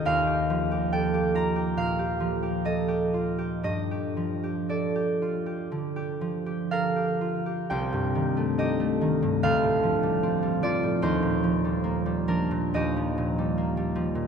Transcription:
<<
  \new Staff \with { instrumentName = "Harp" } { \time 4/4 \key ees \lydian \tempo 4 = 69 <ees'' f'' g'' bes''>4 g''8 bes''8 f''4 ees''4 | ees''4 d''2 <bes' f''>4 | <c'' g''>4 <g' ees''>4 <a' f''>4. <f' d''>8 | <ees' c''>4. <d' bes'>8 <g' ees''>2 | }
  \new Staff \with { instrumentName = "Harp" } { \clef bass \time 4/4 \key ees \lydian <ees, g'>16 g'16 f16 g'16 a'16 g'16 f'16 g'16 bes,16 g'16 f16 g'16 a'16 g'16 f'16 g'16 | g,16 g'16 f16 g'16 a'16 g'16 f'16 g'16 d16 g'16 f16 g'16 a'16 g'16 f'16 g'16 | c,16 g,16 ees16 a16 ees'16 a16 ees16 g,16 d,16 a,16 f16 g16 c'16 g16 f16 a,16 | ees,16 bes,16 f16 g16 bes16 g16 f16 bes,16 ees,16 f16 bes,16 g16 bes16 g16 f16 bes,16 | }
>>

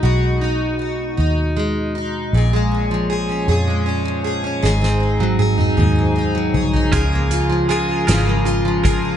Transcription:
<<
  \new Staff \with { instrumentName = "Steel-string acoustic guitar" } { \time 6/8 \key aes \dorian \tempo 4. = 52 <ces aes ees' ges'>8 ees'8 ges'8 ees'8 aes8 ees'8 | <bes, aes'>16 aes16 des'16 f16 aes'16 des'16 <bes, aes'>16 aes16 des'16 f16 aes'16 des'16 | <aes, aes'>16 c'16 ees'16 ges16 aes'16 ees'16 <aes, aes'>16 c'16 ees'16 ges16 aes'16 ees'16 | <des aes'>16 bes16 f'16 f16 aes'16 f'16 <des aes'>16 bes16 f'16 f16 aes'16 f'16 | }
  \new Staff \with { instrumentName = "Clean electric guitar" } { \clef bass \time 6/8 \key aes \dorian r2. | r2. | r2. | <des f aes f' bes'>4 <f aes f' bes'>8 <des f aes f' bes'>4 <aes f' bes'>8 | }
  \new Staff \with { instrumentName = "Fingered electric bass" } { \clef bass \time 6/8 \key aes \dorian ces,4. ees,4. | bes,,4. f,4. | aes,,4. ees,4. | des,4. aes,,4. | }
  \new DrumStaff \with { instrumentName = "Drums" } \drummode { \time 6/8 r4. r4. | r4. r4. | sn16 sn8 tommh16 tommh16 toml16 toml4 tomfh16 tomfh16 | <hh bd>8 hh8 hh8 <hh sn>8 hh8 <hh bd>8 | }
>>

